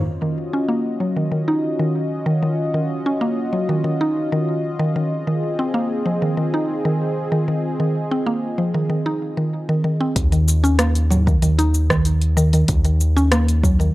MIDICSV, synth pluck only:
0, 0, Header, 1, 2, 480
1, 0, Start_track
1, 0, Tempo, 631579
1, 43, Time_signature, 4, 2, 24, 8
1, 10597, End_track
2, 0, Start_track
2, 0, Title_t, "Synth pluck"
2, 0, Program_c, 0, 84
2, 166, Note_on_c, 0, 51, 65
2, 276, Note_off_c, 0, 51, 0
2, 406, Note_on_c, 0, 61, 90
2, 510, Note_off_c, 0, 61, 0
2, 521, Note_on_c, 0, 58, 91
2, 750, Note_off_c, 0, 58, 0
2, 762, Note_on_c, 0, 54, 69
2, 881, Note_off_c, 0, 54, 0
2, 886, Note_on_c, 0, 51, 72
2, 990, Note_off_c, 0, 51, 0
2, 1000, Note_on_c, 0, 51, 75
2, 1072, Note_off_c, 0, 51, 0
2, 1123, Note_on_c, 0, 63, 85
2, 1353, Note_off_c, 0, 63, 0
2, 1364, Note_on_c, 0, 51, 85
2, 1709, Note_off_c, 0, 51, 0
2, 1718, Note_on_c, 0, 51, 98
2, 1832, Note_off_c, 0, 51, 0
2, 1843, Note_on_c, 0, 51, 76
2, 2073, Note_off_c, 0, 51, 0
2, 2084, Note_on_c, 0, 51, 67
2, 2195, Note_off_c, 0, 51, 0
2, 2326, Note_on_c, 0, 61, 91
2, 2430, Note_off_c, 0, 61, 0
2, 2441, Note_on_c, 0, 58, 97
2, 2670, Note_off_c, 0, 58, 0
2, 2680, Note_on_c, 0, 54, 64
2, 2800, Note_off_c, 0, 54, 0
2, 2805, Note_on_c, 0, 51, 72
2, 2910, Note_off_c, 0, 51, 0
2, 2919, Note_on_c, 0, 51, 72
2, 2992, Note_off_c, 0, 51, 0
2, 3046, Note_on_c, 0, 63, 87
2, 3274, Note_off_c, 0, 63, 0
2, 3285, Note_on_c, 0, 51, 93
2, 3630, Note_off_c, 0, 51, 0
2, 3643, Note_on_c, 0, 51, 101
2, 3755, Note_off_c, 0, 51, 0
2, 3768, Note_on_c, 0, 51, 74
2, 3883, Note_off_c, 0, 51, 0
2, 4007, Note_on_c, 0, 51, 72
2, 4117, Note_off_c, 0, 51, 0
2, 4248, Note_on_c, 0, 60, 89
2, 4351, Note_off_c, 0, 60, 0
2, 4363, Note_on_c, 0, 58, 92
2, 4591, Note_off_c, 0, 58, 0
2, 4603, Note_on_c, 0, 53, 68
2, 4721, Note_off_c, 0, 53, 0
2, 4728, Note_on_c, 0, 51, 73
2, 4831, Note_off_c, 0, 51, 0
2, 4844, Note_on_c, 0, 51, 75
2, 4914, Note_off_c, 0, 51, 0
2, 4969, Note_on_c, 0, 63, 84
2, 5196, Note_off_c, 0, 63, 0
2, 5207, Note_on_c, 0, 51, 95
2, 5551, Note_off_c, 0, 51, 0
2, 5562, Note_on_c, 0, 51, 96
2, 5675, Note_off_c, 0, 51, 0
2, 5685, Note_on_c, 0, 51, 75
2, 5914, Note_off_c, 0, 51, 0
2, 5926, Note_on_c, 0, 51, 71
2, 6036, Note_off_c, 0, 51, 0
2, 6167, Note_on_c, 0, 60, 90
2, 6271, Note_off_c, 0, 60, 0
2, 6281, Note_on_c, 0, 58, 94
2, 6510, Note_off_c, 0, 58, 0
2, 6522, Note_on_c, 0, 53, 71
2, 6640, Note_off_c, 0, 53, 0
2, 6646, Note_on_c, 0, 51, 71
2, 6750, Note_off_c, 0, 51, 0
2, 6761, Note_on_c, 0, 51, 74
2, 6833, Note_off_c, 0, 51, 0
2, 6885, Note_on_c, 0, 63, 86
2, 6990, Note_off_c, 0, 63, 0
2, 7124, Note_on_c, 0, 51, 72
2, 7229, Note_off_c, 0, 51, 0
2, 7364, Note_on_c, 0, 51, 75
2, 7470, Note_off_c, 0, 51, 0
2, 7479, Note_on_c, 0, 51, 75
2, 7599, Note_off_c, 0, 51, 0
2, 7604, Note_on_c, 0, 60, 75
2, 7709, Note_off_c, 0, 60, 0
2, 7845, Note_on_c, 0, 51, 73
2, 7955, Note_off_c, 0, 51, 0
2, 8084, Note_on_c, 0, 61, 95
2, 8189, Note_off_c, 0, 61, 0
2, 8200, Note_on_c, 0, 58, 98
2, 8429, Note_off_c, 0, 58, 0
2, 8439, Note_on_c, 0, 54, 73
2, 8559, Note_off_c, 0, 54, 0
2, 8565, Note_on_c, 0, 51, 81
2, 8670, Note_off_c, 0, 51, 0
2, 8681, Note_on_c, 0, 51, 83
2, 8753, Note_off_c, 0, 51, 0
2, 8805, Note_on_c, 0, 63, 94
2, 9033, Note_off_c, 0, 63, 0
2, 9045, Note_on_c, 0, 51, 98
2, 9390, Note_off_c, 0, 51, 0
2, 9400, Note_on_c, 0, 51, 105
2, 9513, Note_off_c, 0, 51, 0
2, 9526, Note_on_c, 0, 51, 84
2, 9754, Note_off_c, 0, 51, 0
2, 9766, Note_on_c, 0, 51, 71
2, 9876, Note_off_c, 0, 51, 0
2, 10006, Note_on_c, 0, 61, 97
2, 10110, Note_off_c, 0, 61, 0
2, 10121, Note_on_c, 0, 58, 107
2, 10350, Note_off_c, 0, 58, 0
2, 10362, Note_on_c, 0, 54, 76
2, 10481, Note_off_c, 0, 54, 0
2, 10486, Note_on_c, 0, 51, 73
2, 10590, Note_off_c, 0, 51, 0
2, 10597, End_track
0, 0, End_of_file